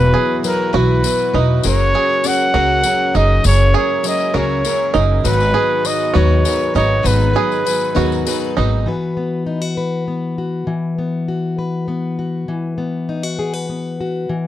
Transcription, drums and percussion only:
0.44 tambourine
1.04 tambourine
1.19 tambourine
1.63 tambourine
1.79 tambourine
2.24 tambourine
2.39 tambourine
2.83 tambourine
3.15 tambourine
3.44 tambourine
4.04 tambourine
4.20 tambourine
4.65 tambourine
4.95 tambourine
5.25 tambourine
5.40 tambourine
5.85 tambourine
6.00 tambourine
6.45 tambourine
6.75 tambourine
7.05 tambourine
7.52 tambourine
7.66 tambourine
7.96 tambourine
8.12 tambourine
8.26 tambourine

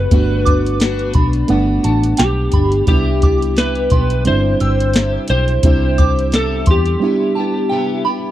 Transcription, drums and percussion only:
0.11 kick, closed hi-hat
0.47 kick, closed hi-hat
0.66 closed hi-hat
0.80 snare, closed hi-hat
0.99 closed hi-hat
1.14 kick, closed hi-hat
1.33 closed hi-hat
1.48 closed hi-hat
1.84 closed hi-hat
2.03 closed hi-hat
2.17 snare, closed hi-hat
2.52 kick, closed hi-hat
2.72 closed hi-hat
2.87 kick, closed hi-hat
3.22 kick, closed hi-hat
3.42 closed hi-hat
3.57 snare, closed hi-hat
3.75 closed hi-hat
3.90 kick, closed hi-hat
4.10 closed hi-hat
4.25 closed hi-hat
4.60 closed hi-hat
4.80 closed hi-hat
4.93 snare, closed hi-hat
5.28 closed hi-hat
5.48 closed hi-hat
5.63 kick, closed hi-hat
5.98 kick, closed hi-hat
6.19 closed hi-hat
6.32 snare, closed hi-hat
6.66 kick, closed hi-hat
6.86 closed hi-hat

